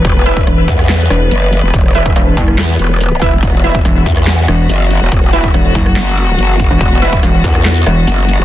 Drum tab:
HH |x-x-x-x-x-x-x-x-|x-x-x-x-x-x-x-x-|x-x-x-x-x-x-x-x-|x-x-x-x-x-x-x-x-|
CP |--------x-------|--------x-------|--------x-------|--------x-------|
SD |----r--ro-r-----|----r--ro-------|----r--ro-r-----|----r--ro-------|
BD |o--o--o---------|o--o--o-------o-|o--o--o---------|o--o--o-------o-|

HH |x-x-x-x-x-x-x-x-|
CP |--------x-------|
SD |----r--ro-r-----|
BD |o--o--o---------|